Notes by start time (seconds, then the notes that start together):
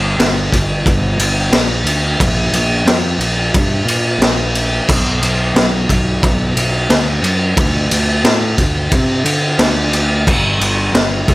Already playing: G1
0.18 G1, snare, ride
0.52 G1, kick, ride
0.86 G1, kick, ride
1.18 G1, ride
1.52 A#1, snare, ride
1.84 D2, ride
2.20 A#1, kick, ride
2.52 A#1, ride
2.85 F2, snare, ride
3.18 A#1, ride
3.54 G2, kick, ride
3.85 A#2, ride
4.19 A#1, snare, ride
4.55 ride
4.89 B1, kick, crash
5.21 B1, ride
5.54 B1, snare, ride
5.89 B1, kick, ride
6.23 B1, kick, ride
6.56 B1, ride
6.89 D2, snare, ride
7.22 F#2, ride
7.57 D2, kick, ride
7.91 D2, ride
8.24 A2, snare, ride
8.58 D2, kick, ride
8.91 C3, kick, ride
9.25 D3, ride
9.59 D2, snare, ride
9.93 ride
10.27 G1, kick, crash
10.59 G1, ride
10.93 G1, snare, ride
11.28 G1, kick, ride